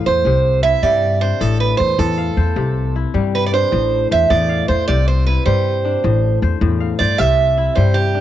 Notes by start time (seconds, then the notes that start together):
Already playing: A2 D4 F5
0.06 E2 C5
0.25 C2 C3
0.63 E4 E5
0.83 G2 G3 D5
1.21 D4 C5
1.41 A1 A2 A4
1.60 B4
1.77 E2 C5
1.98 E2 A2 A4
2.18 F5
2.37 E2 C5
2.56 C2 C3
2.96 E4
3.14 G2 G3
3.35 B4
3.47 D5
3.53 D4 C5
3.72 A1 A2
4.11 E2 C5 E5
4.30 E2 A2 D5
4.49 F5
4.68 E2 C5
4.88 C2 C3 D5
5.08 C5
5.27 E4 B4
5.46 G2 G3 C5
5.85 D4
6.04 A1 A2
6.42 E2 C5
6.61 E2 A2
6.80 F5
6.99 G2 C5 D5
7.18 C2 C3 E5
7.58 E4
7.75 G2 G3 C5
7.94 G4
8.15 D4